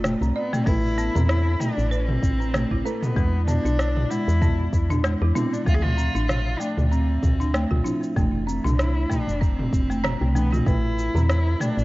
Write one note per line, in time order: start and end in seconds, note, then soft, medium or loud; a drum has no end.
0.00 0.16 F1 medium
0.00 0.35 A3 medium
0.00 0.68 D4 medium
0.00 0.68 D5 medium
0.04 0.21 A3 medium
0.04 cross-stick loud
0.04 mid tom medium
0.04 cabasa medium
0.21 0.32 C2 medium
0.21 0.34 C4 medium
0.21 cabasa soft
0.36 0.54 B3 medium
0.36 0.51 D5 medium
0.53 0.61 A3 medium
0.53 0.68 C4 loud
0.53 mid tom medium
0.53 cabasa medium
0.66 1.10 A1 loud
0.66 0.96 A3 medium
0.66 2.81 E4 medium
0.66 1.28 E4 loud
0.66 2.82 A4 medium
0.66 2.83 B4 medium
0.66 kick loud
0.66 mid tom medium
0.66 crash medium
0.66 cabasa soft
0.98 1.08 B3 medium
0.98 cabasa medium
1.15 1.56 E2 medium
1.15 1.23 C4 medium
1.15 mid tom medium
1.15 cabasa soft
1.29 1.61 E4 loud
1.29 cross-stick loud
1.29 cabasa soft
1.60 1.90 A3 medium
1.60 1.92 D4 loud
1.60 mid tom medium
1.60 cabasa medium
1.78 2.18 A1 medium
1.78 cabasa soft
1.90 2.86 C4 loud
1.90 2.38 B4 medium
1.90 cabasa soft
2.09 mid tom medium
2.23 2.66 A1 medium
2.23 kick loud
2.23 cabasa medium
2.40 2.48 C4 medium
2.40 cabasa soft
2.54 2.70 A3 medium
2.54 cross-stick loud
2.54 mid tom medium
2.54 cabasa soft
2.71 2.82 A1 medium
2.71 2.84 E4 medium
2.71 kick medium
2.84 3.04 A3 medium
2.84 3.12 C4 medium
2.84 3.15 C4 medium
2.84 3.13 E4 medium
2.84 3.13 A4 medium
2.84 3.13 B4 medium
2.84 cabasa medium
3.02 3.47 B3 medium
3.02 mid tom medium
3.02 cabasa soft
3.15 3.60 E2 loud
3.15 5.31 G#3 medium
3.15 3.46 G#3 medium
3.15 5.32 B3 medium
3.15 5.32 D4 medium
3.15 5.33 E4 medium
3.15 kick loud
3.15 cabasa soft
3.47 3.58 B3 medium
3.47 4.11 D4 loud
3.47 mid tom medium
3.47 cabasa medium
3.65 4.06 B1 medium
3.65 3.73 D4 medium
3.65 cabasa soft
3.79 cross-stick loud
3.79 cabasa soft
3.97 mid tom medium
4.10 4.40 G#3 medium
4.10 4.72 E4 loud
4.10 cabasa medium
4.28 4.68 E2 medium
4.28 cabasa soft
4.42 4.88 B3 medium
4.42 kick loud
4.42 mid tom medium
4.42 cabasa soft
4.73 5.16 E2 medium
4.73 kick loud
4.73 cabasa medium
4.90 4.98 D4 medium
4.90 mid tom medium
4.90 cabasa soft
5.04 5.20 G#3 medium
5.04 cross-stick loud
5.04 cabasa soft
5.22 5.32 E2 medium
5.22 5.35 E4 medium
5.35 5.63 G#3 medium
5.35 5.63 B3 medium
5.35 5.54 C4 medium
5.35 5.65 D4 medium
5.35 5.63 D4 medium
5.35 5.64 E4 medium
5.35 mid tom medium
5.35 cabasa medium
5.53 5.66 D4 medium
5.53 cabasa soft
5.65 6.10 D2 loud
5.65 7.81 F3 medium
5.65 5.96 A3 medium
5.65 7.82 A3 medium
5.65 7.82 C4 medium
5.65 5.76 F4 loud
5.65 kick loud
5.65 cabasa soft
5.69 7.83 E5 medium
5.74 5.84 G#4 loud
5.82 6.27 F4 loud
5.82 mid tom medium
5.97 6.07 C4 medium
5.97 cabasa medium
6.15 6.56 A1 medium
6.15 6.23 D4 medium
6.15 cabasa soft
6.28 6.60 F4 loud
6.28 cross-stick loud
6.28 mid tom medium
6.28 cabasa soft
6.59 6.90 A3 medium
6.59 6.89 D4 loud
6.59 cabasa medium
6.78 7.18 D2 medium
6.78 mid tom medium
6.78 cabasa soft
6.90 7.80 C4 medium
6.90 7.38 C4 medium
6.90 cabasa soft
7.22 7.66 D2 medium
7.22 kick loud
7.22 mid tom medium
7.22 cabasa medium
7.40 7.48 D4 medium
7.40 cabasa soft
7.54 7.70 A3 medium
7.54 cross-stick loud
7.54 cabasa soft
7.71 7.82 D2 loud
7.71 7.84 F4 medium
7.71 kick medium
7.71 mid tom medium
7.84 8.13 F3 medium
7.84 8.13 A3 medium
7.84 8.13 C4 medium
7.84 8.15 D4 medium
7.84 8.14 E4 medium
7.84 cabasa medium
8.03 cabasa soft
8.16 8.60 F1 loud
8.16 10.31 E3 medium
8.16 8.46 A3 medium
8.16 10.32 A3 medium
8.16 10.33 D4 medium
8.16 kick loud
8.16 mid tom medium
8.16 cabasa soft
8.47 8.80 A3 medium
8.47 8.57 C4 medium
8.47 cabasa medium
8.64 9.06 C2 medium
8.64 8.73 D4 medium
8.64 mid tom medium
8.64 cabasa soft
8.79 9.11 E4 medium
8.79 cross-stick loud
8.79 cabasa soft
9.10 9.40 A3 medium
9.10 9.43 D4 loud
9.10 kick medium
9.10 mid tom medium
9.10 cabasa medium
9.28 9.68 F1 medium
9.28 cabasa soft
9.41 9.57 C4 medium
9.41 10.34 C4 medium
9.41 kick loud
9.41 cabasa soft
9.59 mid tom medium
9.73 10.16 F1 medium
9.73 kick loud
9.73 cabasa medium
9.90 10.03 A3 medium
9.90 cabasa soft
10.04 10.20 C4 loud
10.04 cross-stick loud
10.04 mid tom medium
10.04 cabasa soft
10.21 10.62 C2 loud
10.21 10.34 A3 medium
10.34 10.55 B2 medium
10.34 10.55 E3 medium
10.34 10.55 A3 medium
10.34 10.51 A3 medium
10.34 10.53 B3 medium
10.34 10.56 D4 medium
10.34 cabasa medium
10.52 10.68 C4 medium
10.52 10.66 F4 medium
10.52 mid tom medium
10.52 cabasa soft
10.65 11.10 A1 medium
10.65 11.13 A3 medium
10.65 11.84 E4 medium
10.65 11.28 E4 loud
10.65 11.84 A4 medium
10.65 11.84 B4 medium
10.65 kick loud
10.65 mid tom medium
10.65 cabasa soft
10.99 cabasa medium
11.15 11.56 E2 medium
11.15 11.23 C4 medium
11.15 mid tom medium
11.15 cabasa soft
11.29 11.61 E4 loud
11.29 cross-stick loud
11.29 cabasa soft
11.60 11.84 A3 medium
11.60 11.84 D4 loud
11.60 mid tom medium
11.60 cabasa medium
11.77 11.84 A1 medium
11.77 cabasa soft